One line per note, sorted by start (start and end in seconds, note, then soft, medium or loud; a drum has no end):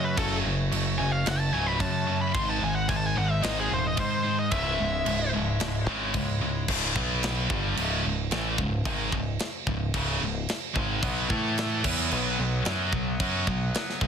0.00 0.15 F#2 medium
0.00 0.15 F#2 loud
0.00 0.15 C#3 medium
0.00 2.32 A3 medium
0.00 2.32 F#4 medium
0.00 2.32 C#5 medium
0.04 0.17 B4 loud
0.16 0.43 F#1 loud
0.16 0.43 F#2 medium
0.16 0.43 C#3 loud
0.16 0.43 F#3 loud
0.16 0.35 A4 medium
0.16 kick loud
0.16 crash medium
0.45 0.71 F#1 loud
0.45 0.69 F#2 medium
0.45 0.69 C#3 medium
0.71 0.98 F#1 loud
0.71 0.96 F#2 medium
0.71 0.97 C#3 loud
0.71 crash medium
0.98 1.25 F#1 medium
0.98 1.24 F#2 medium
0.98 1.24 C#3 loud
0.98 1.12 G#5 loud
1.12 1.26 F5 loud
1.26 1.52 F#1 loud
1.26 1.51 F#2 medium
1.26 1.51 C#3 medium
1.26 1.39 F#5 loud
1.26 snare loud
1.26 crash medium
1.39 1.53 A5 medium
1.53 1.79 C#1 medium
1.53 1.78 F#2 loud
1.53 1.79 C#3 medium
1.53 1.79 F#3 medium
1.53 1.67 G#5 loud
1.67 1.80 B5 loud
1.80 2.05 F#2 medium
1.80 2.32 F#2 medium
1.80 2.05 C#3 loud
1.80 2.19 A5 medium
1.80 kick medium
1.80 crash medium
2.07 2.32 F#2 medium
2.07 2.32 C#3 medium
2.22 2.35 B5 loud
2.34 2.61 G#1 medium
2.34 2.60 G#2 loud
2.34 2.60 D#3 loud
2.34 6.64 G#3 medium
2.34 2.60 G#3 loud
2.34 4.50 D#4 medium
2.34 4.50 C5 medium
2.34 2.48 C6 loud
2.34 kick loud
2.34 crash medium
2.50 2.63 A5 loud
2.61 2.88 G#1 medium
2.61 2.86 G#2 medium
2.61 2.87 D#3 medium
2.61 2.75 G#5 loud
2.75 2.88 F#5 medium
2.88 3.15 G#1 loud
2.88 3.14 G#2 medium
2.88 3.14 D#3 medium
2.88 2.98 G#5 medium
2.88 kick medium
2.88 crash medium
2.96 3.06 A5 loud
3.07 3.16 G#5 loud
3.16 3.42 G#1 loud
3.16 3.40 G#2 medium
3.16 3.40 D#3 loud
3.16 3.31 F#5 loud
3.31 3.44 E5 loud
3.42 3.70 G#1 loud
3.42 3.68 G#2 medium
3.42 3.69 D#3 loud
3.42 3.69 G#3 loud
3.42 3.57 D#5 medium
3.42 snare loud
3.42 crash medium
3.60 3.72 G#4 medium
3.70 3.97 D#1 loud
3.70 3.95 G#2 medium
3.70 3.95 D#3 medium
3.70 3.85 C5 medium
3.87 3.99 D#5 loud
3.97 4.22 G#2 medium
3.97 4.49 G#2 medium
3.97 4.22 D#3 medium
3.97 4.36 C5 medium
3.97 kick medium
3.97 crash medium
4.24 4.49 G#2 medium
4.24 4.49 D#3 loud
4.39 4.52 D#5 loud
4.51 4.78 C#1 medium
4.51 4.77 C#2 loud
4.51 4.77 G#2 loud
4.51 4.78 C#3 loud
4.51 6.66 E4 medium
4.51 6.66 C#5 medium
4.51 5.29 E5 medium
4.51 kick loud
4.51 crash medium
4.79 5.05 C#1 medium
4.79 5.03 C#2 medium
4.79 5.04 G#2 medium
5.06 5.32 C#1 loud
5.06 5.30 C#2 medium
5.06 5.31 G#2 medium
5.06 crash medium
5.33 5.59 C#1 medium
5.33 5.58 C#2 medium
5.33 5.58 G#2 medium
5.60 5.86 C#1 loud
5.60 5.85 C#2 medium
5.60 5.85 G#2 medium
5.60 snare loud
5.60 crash medium
5.87 6.13 G#1 medium
5.87 6.13 C#2 medium
5.87 6.13 G#2 medium
5.87 6.13 C#3 loud
6.14 6.39 C#2 medium
6.14 6.66 C#2 medium
6.14 6.39 G#2 medium
6.14 kick medium
6.14 crash medium
6.41 6.66 C#2 medium
6.41 6.66 G#2 medium
6.68 6.94 C#1 loud
6.68 6.95 C#2 medium
6.68 6.95 G#2 loud
6.68 6.96 C#3 loud
6.68 kick loud
6.68 crash loud
6.68 crash medium
6.95 7.46 B1 loud
6.95 7.49 B2 medium
6.95 7.50 F#3 loud
6.95 7.50 B3 loud
6.95 kick medium
7.23 snare loud
7.23 crash medium
7.50 7.75 G1 loud
7.50 7.76 G2 loud
7.50 7.77 D3 loud
7.50 7.77 G3 loud
7.50 kick loud
7.77 8.02 C#1 loud
7.77 8.03 C#2 medium
7.77 8.04 G#2 medium
7.77 8.04 C#3 loud
7.77 crash medium
8.05 8.30 C#1 medium
8.05 8.26 C#2 medium
8.05 8.26 G#2 medium
8.31 8.57 A1 loud
8.31 8.58 A2 medium
8.31 8.58 E3 loud
8.31 8.58 A3 loud
8.31 snare loud
8.31 crash medium
8.58 8.84 C#1 medium
8.58 8.81 C#2 medium
8.58 8.81 G#2 medium
8.58 kick loud
8.85 9.11 G#1 medium
8.85 9.12 G#2 loud
8.85 9.12 D#3 loud
8.85 9.13 G#3 loud
8.85 kick loud
8.85 crash medium
9.12 9.38 C#1 medium
9.12 9.35 C#2 medium
9.12 9.35 G#2 medium
9.12 kick medium
9.39 snare loud
9.39 crash medium
9.67 9.92 C#1 medium
9.67 9.89 C#2 medium
9.67 9.89 G#2 medium
9.67 kick medium
9.94 10.19 C#1 loud
9.94 10.20 C#2 loud
9.94 10.20 G#2 medium
9.94 10.21 C#3 loud
9.94 kick loud
9.94 crash medium
10.21 10.46 C#1 medium
10.21 10.43 C#2 medium
10.21 10.43 G#2 medium
10.49 snare loud
10.49 crash medium
10.74 11.01 G#1 loud
10.74 11.01 G#2 loud
10.74 11.02 D#3 loud
10.74 11.02 G#3 loud
10.74 kick loud
11.02 11.28 B1 loud
11.02 11.29 B2 medium
11.02 11.29 F#3 medium
11.02 11.29 F#3 loud
11.02 11.29 B3 medium
11.02 11.29 B3 loud
11.02 11.30 B4 medium
11.02 kick loud
11.02 crash medium
11.29 11.80 A2 loud
11.29 11.84 E3 medium
11.29 11.83 A3 medium
11.29 11.84 A3 medium
11.29 11.83 E4 loud
11.29 11.84 A4 loud
11.29 11.84 A4 medium
11.29 kick medium
11.58 snare loud
11.58 crash medium
11.84 12.10 E2 loud
11.84 12.11 E3 loud
11.84 14.07 F#3 medium
11.84 12.11 B3 loud
11.84 14.07 B3 medium
11.84 12.11 E4 loud
11.84 14.07 B4 medium
11.84 kick loud
11.84 crash loud
12.10 12.37 B1 loud
12.10 12.37 B2 loud
12.10 12.37 F#3 loud
12.10 12.38 B3 loud
12.10 crash medium
12.39 12.64 B1 medium
12.39 12.60 B2 medium
12.39 12.60 F#3 medium
12.65 12.91 F#2 loud
12.65 12.91 F#3 medium
12.65 12.92 C#4 medium
12.65 12.93 F#4 loud
12.65 snare loud
12.65 crash medium
12.92 13.18 B1 medium
12.92 13.14 B2 medium
12.92 13.14 F#3 medium
12.92 kick medium
13.20 13.45 F#2 medium
13.20 13.46 F#3 loud
13.20 13.47 C#4 loud
13.20 13.47 F#4 loud
13.20 kick loud
13.20 crash medium
13.47 13.73 B1 medium
13.47 13.69 B2 medium
13.47 13.69 F#3 medium
13.47 kick medium
13.74 snare loud
13.74 crash medium
13.90 snare soft
14.01 14.07 B1 medium
14.01 14.07 B2 medium
14.01 14.07 F#3 medium
14.01 kick medium